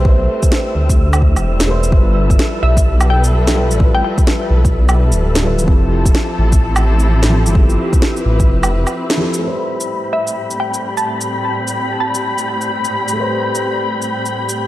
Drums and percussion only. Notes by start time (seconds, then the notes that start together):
0.05 kick
0.43 kick, shaker
0.52 snare
0.89 kick, shaker
1.13 low woodblock, shaker
1.22 kick
1.36 low woodblock, shaker
1.60 snare, shaker
1.83 shaker
1.92 kick
2.30 kick, shaker
2.39 snare
2.77 kick, shaker
3.01 low woodblock, shaker
3.24 shaker
3.47 snare, shaker
3.71 shaker
3.80 kick
4.18 kick, shaker
4.27 snare
4.65 kick, shaker
4.89 low woodblock, shaker
5.12 shaker
5.35 snare, shaker
5.59 shaker
5.68 kick
6.05 kick, shaker
6.15 snare
6.52 kick, shaker
6.76 low woodblock, shaker
6.99 shaker
7.23 snare, shaker
7.46 shaker
7.55 kick
7.70 shaker
7.93 kick, shaker
8.02 snare
8.17 shaker
8.40 kick, shaker
8.63 low woodblock, shaker
8.87 low woodblock, shaker
9.10 snare, shaker
9.34 shaker
9.80 shaker
10.27 shaker
10.51 shaker
10.74 shaker
10.97 shaker
11.21 shaker
11.67 shaker
12.14 shaker
12.38 shaker
12.61 shaker
12.85 shaker
13.08 shaker
13.55 shaker
14.02 shaker
14.26 shaker
14.49 shaker